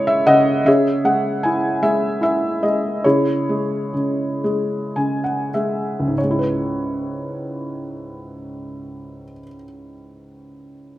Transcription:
Already playing: C#3 G#3 E4 C#5
0.07 E5
0.27 C#3 D#5 F#5
0.65 C#3 G#4 C#5 E5
1.04 G#3 F#5
1.43 E4 G#5
1.82 G#3 E5
2.21 E4 E5
2.63 G#3 D#5
3.04 C#3 E4 G#4 C#5
3.49 G#3
3.94 C#3
4.44 G#3
4.96 C#3 G#5
5.24 F#5
5.54 G#3 E5
5.99 C#2
6.07 G#2
6.15 C#3 C#5
6.23 G#3
6.31 E4
6.39 B4

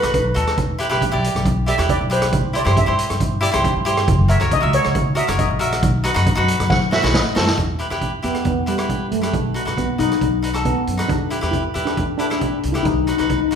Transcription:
Already playing: B4
0.02 B1 D#4 F#4 B4, cross-stick, closed hi-hat
0.14 B1 B4, kick, closed hi-hat
0.34 D#2 D#4 F#4 A4, closed hi-hat
0.47 cross-stick, closed hi-hat
0.58 E2, kick, closed hi-hat
0.79 E4 G4 B4, closed hi-hat
0.89 B1 E4 G4 B4, cross-stick, closed hi-hat
1.02 kick, closed hi-hat
1.12 B1 E4 G4 D5
1.24 closed hi-hat
1.35 B1, cross-stick, closed hi-hat
1.45 kick, closed hi-hat
1.66 E4 G4 D5 E5, closed hi-hat
1.78 E2 E4 G4 B4, cross-stick, closed hi-hat
1.89 D5, kick, closed hi-hat
2.01 B1
2.10 E4 G4 B4 C5, closed hi-hat
2.22 cross-stick, closed hi-hat
2.33 C2, kick, closed hi-hat
2.53 E4 G4 C5 D5, closed hi-hat
2.65 G2 E4 G4 C5, cross-stick, closed hi-hat
2.77 E5, kick, closed hi-hat
2.86 G2 E4 G4 C5
2.99 closed hi-hat
3.10 G2, cross-stick, closed hi-hat
3.20 kick, closed hi-hat
3.41 E4 G4 D5, closed hi-hat
3.52 C2 E4 G4 C5, cross-stick, closed hi-hat
3.64 kick, closed hi-hat
3.77 G2
3.85 E4 G4 C5, closed hi-hat
3.97 cross-stick, closed hi-hat
4.08 F#1, kick, closed hi-hat
4.28 F#4 A#4 C#5 E5, closed hi-hat
4.40 C#2 F#4 A#4 C#5, cross-stick, closed hi-hat
4.51 D#5, kick, closed hi-hat
4.61 C#2 F#4 A#4 E5
4.73 C#5, closed hi-hat
4.84 C#2, cross-stick, closed hi-hat
4.95 kick, closed hi-hat
5.15 F#4 A#4 D#5 E5, closed hi-hat
5.27 F#1 F#4 A#4 C#5, cross-stick, closed hi-hat
5.39 D#5, kick, closed hi-hat
5.50 A#1
5.59 F#4 A#4 E5, closed hi-hat
5.72 cross-stick, closed hi-hat
5.83 B1, kick, closed hi-hat
6.04 D#4 F#4 B4, closed hi-hat
6.14 F#2 D#4 F#4 B4, cross-stick, closed hi-hat
6.26 kick, closed hi-hat
6.35 F#2 D#4 F#4 B4
6.48 closed hi-hat
6.60 F#2, cross-stick, closed hi-hat
6.70 F#5, kick, snare
6.91 D#4 F#4 B4 E5, snare
7.02 B1 D#4 F#4 B4, snare
7.14 A2 D#5, kick, snare
7.35 F#2 D#4 F#4 A4, snare
7.47 snare
7.57 E2, kick, closed hi-hat
7.79 E4 G4 B4, closed hi-hat
7.90 E2 E4 G4 B4, cross-stick, closed hi-hat
8.01 kick, closed hi-hat
8.23 E2 B3 E4 G4 B4, closed hi-hat
8.34 cross-stick, closed hi-hat
8.45 E2 B3, kick, closed hi-hat
8.66 G3 E4 G4 B4, closed hi-hat
8.78 E4 G4 B4, cross-stick, closed hi-hat
8.89 kick, closed hi-hat
9.11 F#2 A3, closed hi-hat
9.21 E4 G4 B4, cross-stick, closed hi-hat
9.33 B1, kick, closed hi-hat
9.54 D#4 F#4 B4, closed hi-hat
9.65 B1 D#4 F#4 B4, cross-stick, closed hi-hat
9.77 B3, kick, closed hi-hat
9.98 B1 D#4 F#4 B4, closed hi-hat
10.11 cross-stick, closed hi-hat
10.21 B1, kick, closed hi-hat
10.42 D#4 F#4 B4, closed hi-hat
10.54 D#4 F#4 A4, cross-stick, closed hi-hat
10.65 B3, kick, closed hi-hat
10.87 F#2, closed hi-hat
10.97 D#4 F#4 B4, cross-stick, closed hi-hat
11.08 E2 D4, kick, closed hi-hat
11.30 E4 G4 B4, closed hi-hat
11.41 E2 E4 G4 B4, cross-stick, closed hi-hat
11.51 E4, kick, closed hi-hat
11.74 E2 E4 G4 B4, closed hi-hat
11.85 D4, cross-stick, closed hi-hat
11.97 E2, kick, closed hi-hat
12.18 D4 E4 G4 B4, closed hi-hat
12.26 D4 E4
12.31 D4 G4 B4, cross-stick, closed hi-hat
12.39 D4, kick, closed hi-hat
12.47 D4
12.54 D4
12.63 C2, closed hi-hat
12.72 E4 G4 B4, cross-stick, closed hi-hat
12.83 B1 D#4, kick, closed hi-hat
13.07 D#4 F#4 B4, closed hi-hat
13.17 B1 D#4 F#4 B4, cross-stick, closed hi-hat
13.25 D#4
13.30 D#4, kick, closed hi-hat
13.41 D#4
13.48 D#4 F#4, closed hi-hat

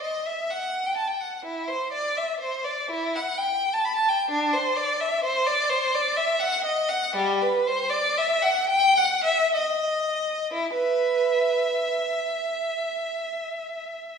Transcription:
0.02 D#5
0.26 E5
0.50 F#5
0.86 G5
0.97 A5
1.07 G5
1.20 F#5
1.45 E4
1.68 C5
1.92 D5
2.17 E5
2.40 C5
2.64 D5
2.91 E4
3.15 F#5
3.38 G5
3.73 A5
3.85 B5
3.95 A5
4.08 G5
4.30 D4
4.53 C5
4.76 D5
5.00 E5
5.24 C5
5.46 D5
5.70 C5
5.94 D5
6.16 E5
6.40 F#5
6.64 D#5
6.89 F#5
7.16 G3
7.42 B4
7.67 C5
7.89 D5
8.17 E5
8.42 F#5
8.69 G5
8.98 F#5
9.24 E5
9.54 D#5
10.53 E4
10.73 B4 E5

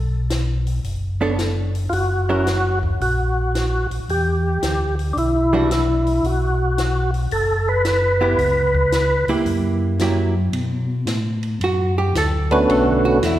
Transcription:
Already playing: B1
0.30 snare, closed hi-hat
0.67 open hi-hat
0.84 F#1, open hi-hat
1.21 B3 D4 A4 C#5
1.39 snare, closed hi-hat
1.75 open hi-hat
1.89 F#1 F4 F#4, open hi-hat
2.29 F#3 C#4 E4 A#4
2.47 snare, closed hi-hat
2.83 kick
3.01 A#1 F#4, open hi-hat
3.55 snare, closed hi-hat
3.91 A#1, open hi-hat
4.09 E2 G4, open hi-hat
4.63 D2, snare, closed hi-hat
4.99 open hi-hat
5.13 B1 D4
5.17 E4, open hi-hat
5.53 E3 G3 D4 F#4
5.71 E4, snare, closed hi-hat
6.07 open hi-hat
6.23 B1 F#4, open hi-hat
6.78 snare, closed hi-hat
7.14 open hi-hat
7.31 F#1 A4, open hi-hat
7.69 B4
7.85 snare, closed hi-hat
8.21 B3 E4 G4
8.38 C#2, open hi-hat
8.74 kick
8.92 snare, closed hi-hat
9.27 C#2 A#3 E4 G4, open hi-hat
9.45 F#2, open hi-hat
9.99 F#3 A#3 E4 G4, snare, closed hi-hat
10.53 B2, ride
11.06 A2, snare, hi-hat pedal, ride
11.43 ride
11.61 F#2 F#4, ride
11.98 G4
12.15 D2 A4, snare, hi-hat pedal, ride
12.51 D3 A3 B3 C#4 F#4 B4, ride
12.69 B1 A4, ride
13.05 F#4
13.22 E2 E4, snare, hi-hat pedal, ride

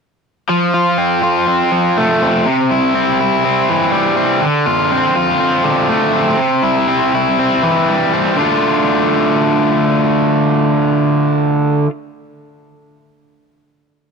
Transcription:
0.49 F3
0.74 F4
0.98 C4
1.23 F4
1.47 C4
1.72 F3
1.97 A3
2.22 C4
2.46 C3
2.71 E4
2.95 C4
3.21 E4
3.45 C4
3.69 E3
3.92 G3
4.17 C4
4.41 D3
4.66 F4
4.91 C4
5.15 F4
5.40 C4
5.64 D3
5.89 A3
6.13 C4
6.37 C3
6.63 E4
6.88 C4
7.15 E4
7.39 C4
7.63 E3
7.88 G3
8.14 C4
8.36 D3 A3 D4 F4

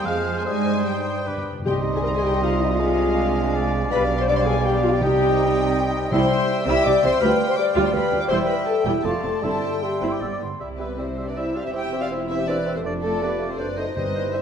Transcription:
Already playing: C5
0.05 F2 F3 G#3 C4 G#4 F5 F6
0.36 G#3 G#5
0.46 G2 G3 G#3 D#4 C5 G#5 D#6
0.85 G3 G5
1.26 G2 D4 B4 D6
1.35 G2
1.43 G2
1.52 G2
1.59 G2
1.65 C2 C3 G3 D#4 G4 D#5 G5 C6
1.96 G#4 G#5
2.04 A#4 A#5
2.15 G#4 G#5
2.23 G4 G5
2.42 F4 F5
2.61 D#4 D#5
2.70 F4 F5
2.78 G#3 D4 F5 G#5
3.56 D5
3.90 B1 B2 G3 D4 B4 F5 B5
4.19 C5 C6
4.28 G3 D4 D5 F5 D6
4.37 C5 C6
4.46 G#4 G#5
4.64 G3 D4 G4 F5 G5
4.83 F4 F5
4.93 G4 G5
5.01 C2 C3 G3 D#4 D#5 G5
6.12 C2 C3 G3 E4 C5 E5 G5 C6
6.67 C2 C3 G3 E4 E5 E6
6.85 C2 C3 G3 D5 D6
7.03 C2 C3 G3 C4 C5 C6
7.21 D2 G3 F4 B4 F5 G5 B5
7.48 C5 C6
7.57 G3 D5 F5 G5 D6
7.76 D2 G3 F4
7.85 C5 C6
7.92 D2 G3 B3 B4 F5 G5 B5
8.12 D2 G3 D4
8.20 D5 D6
8.29 E1 E2 G3 E4 C5 E5 G5 C6
8.46 B4 B5
8.66 A4 A5
8.85 E1 E2 G3 E4 G4 G5
9.04 F1 F2 A3 C4 F4 D5 F5 A5 C6
9.23 F1 F2 C4 A4 A5
9.41 G1 G2 G3 C4 E4 A4 E5 G5 A5 C6
9.81 G3 G4 E5 G5 C6
10.01 G1 G2 C4 E4
10.12 D6
10.20 G1 G2 G3 B3 D5 E6
10.32 D6
10.40 G1 G2 B3 C6
10.60 C2 C3 G3 C4 E4 G4 E5
10.78 G3 B3 C4 G4 B4 E5
10.98 G3 C4 E4 G4 C5 E5
11.18 G3 C4 G4 E5
11.26 D4 B4 D5
11.37 G3 E4 C5 E5
11.55 G3 C4 F4 G4 D5 E5 F5
11.65 E4 C5 E5
11.73 E1 E2 C4 E4 G4 E5 G5
11.93 C4 G4 E5
12.00 F4 D5 F5
12.12 C4 E4 E5
12.29 C4 E4 G4 C5 E5
12.48 C4 D4 E4 B4 D5 E5
12.66 C4 G4 E5
12.75 C4 A4 C5
12.84 F1 F2 A3 D4 F4 D5
13.02 A3 F4 A4 D5
13.21 A3 B3 D4 G4 B4 D5
13.39 A3 F4 D5
13.49 C4 A4 C5
13.58 F#1 F#2 A3 C4 D4 F#4 B4 C5 D5
13.77 A3 D#4 C5 D#5
13.95 G1 G2 G3 C4 D#4 G4 B4 C5 D#5
14.15 G3 E4 C5
14.33 G3 C4 E4 C5 E5

